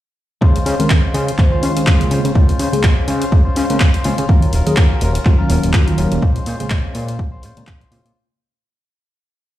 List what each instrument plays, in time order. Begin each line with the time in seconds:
0.41 analog synth bass C#2, tine electric piano D#3 G#3 C4 C#4 F4, clean electric guitar G#3 C#4 F4 C5, kick
0.56 closed hi-hat
0.65 analog synth bass C#3, clean electric guitar G#3 C#4 F4 C5, open hi-hat
0.79 analog synth bass C#2, tine electric piano D#3 G#3 C4 C#4 A#4, clean electric guitar C#4 F4 C5, closed hi-hat
0.89 analog synth bass C#2, clean electric guitar G#3 C#4 F4 C5, tine electric piano F4, kick, clap
1.13 analog synth bass C#3, clean electric guitar G#3 C#4 F4 C5, open hi-hat
1.27 clean electric guitar C#4 F4 C5, closed hi-hat
1.38 analog synth bass C#2, tine electric piano D#3 G#3 C#4 F4 C5, kick, clap
1.52 clean electric guitar C#4 F4 C5
1.62 analog synth bass C#3, clean electric guitar G#3 C#4 F4 C5, open hi-hat
1.77 analog synth bass C#3, closed hi-hat
1.86 analog synth bass C#2, tine electric piano D#3 G#3 C4 C#4 G#4, clean electric guitar G#3 C#4 F4 C5, kick, clap
2.00 tine electric piano C#3 G#3 A#3 C4 F4, clean electric guitar C#4 F4 C5, closed hi-hat
2.10 analog synth bass C#3, clean electric guitar G#3 C#4 F4 C5, open hi-hat
2.24 analog synth bass C#3, clean electric guitar C#4 F4 C5, closed hi-hat
2.34 analog synth bass C#2, tine electric piano C#3 G#3 A#3 C4 F4, clean electric guitar G#3 C#4 F4 C5, kick
2.49 closed hi-hat
2.59 analog synth bass C#3, clean electric guitar G#3 C#4 F4 C5, open hi-hat
2.72 analog synth bass C#2, tine electric piano C#3 G#3 A#3 C4 G#4, clean electric guitar F4 C5, closed hi-hat
2.83 analog synth bass C#2, tine electric piano C#3 F4, clean electric guitar G#3 C#4 F4 C5, kick, clap
3.07 analog synth bass C#3, clean electric guitar G#3 C#4 F4 C5, open hi-hat
3.21 clean electric guitar C#4 F4 C5, closed hi-hat
3.32 analog synth bass C#2, kick
3.45 analog synth bass C#3, clean electric guitar C#4 F4 C5
3.56 analog synth bass C#3, clean electric guitar G#3 C#4 F4 C5, open hi-hat
3.70 tine electric piano C#3 G#3 A#3 C4 A#4, analog synth bass C#3, closed hi-hat
3.80 analog synth bass C#2, clean electric guitar C#4 F4 C5, kick, clap
3.93 clean electric guitar C#4 F4 C5, closed hi-hat
4.04 tine electric piano C#3 G#3 A#3 C4 F4, analog synth bass C#3, clean electric guitar G#3 C#4 F4 C5, open hi-hat
4.18 analog synth bass C#3, clean electric guitar C#4 F4 C5, closed hi-hat
4.28 analog synth bass D#2, tine electric piano D#3 F#3 A#3 C#4 F4, clean electric guitar F#3 C#4 F4 A#4, kick
4.42 closed hi-hat
4.52 analog synth bass D#1, clean electric guitar F#3 C#4 F4 A#4, open hi-hat
4.66 analog synth bass D#2, tine electric piano D#3 F#3 A#3 C#4 G#4, clean electric guitar C#4 F4 A#4, closed hi-hat
4.76 analog synth bass D#2, tine electric piano D#3 F#3 A#3 F4, clean electric guitar F#3 C#4 F4 A#4, kick, clap
5.01 analog synth bass D#1, clean electric guitar F#3 C#4 F4 A#4, open hi-hat
5.14 clean electric guitar C#4 F4 A#4, closed hi-hat
5.25 analog synth bass D#2, tine electric piano D#3 F#3 A#3 C#4 F4, kick, clap
5.38 clean electric guitar C#4 F4 A#4
5.49 analog synth bass D#1, clean electric guitar F#3 C#4 F4 A#4, open hi-hat
5.63 analog synth bass D#1, closed hi-hat
5.73 analog synth bass D#2, tine electric piano D#3 F#3 A#3 F#4, clean electric guitar F#3 C#4 F4 A#4, kick, clap
5.87 tine electric piano D#3 F#3 A#3 C#4 F4, clean electric guitar C#4 F4 A#4, closed hi-hat
5.97 analog synth bass D#1, clean electric guitar F#3 C#4 F4 A#4, open hi-hat
6.12 analog synth bass D#1, closed hi-hat
6.21 analog synth bass A#1, tine electric piano C#3 G#3 A#3 C4 F4, clean electric guitar C#4 F4 C5, kick
6.36 closed hi-hat
6.45 analog synth bass A#2, clean electric guitar G#3 C#4 F4 C5, open hi-hat
6.59 analog synth bass A#1, tine electric piano C#3 G#3 A#3 C4 G#4, clean electric guitar C#4 F4 C5, closed hi-hat
6.70 analog synth bass A#1, clean electric guitar G#3 C#4 F4, kick, clap
6.94 analog synth bass A#2, clean electric guitar G#3 C#4 F4 C5, open hi-hat
7.08 clean electric guitar C#4 F4 C5, closed hi-hat
7.19 analog synth bass A#1, kick
7.32 clean electric guitar C#4 F4 C5
7.42 analog synth bass A#2, clean electric guitar G#3 C#4 F4 C5, open hi-hat
7.57 analog synth bass A#2, tine electric piano C#3 G#3 A#3 C4 A#4, closed hi-hat
7.67 analog synth bass A#1, clean electric guitar G#3, kick, clap
7.80 clean electric guitar C#4 F4 C5, closed hi-hat
7.91 analog synth bass A#2, tine electric piano C#3 G#3 A#3 C4 F4, clean electric guitar G#3 C#4 F4 C5, open hi-hat
8.05 analog synth bass A#2, closed hi-hat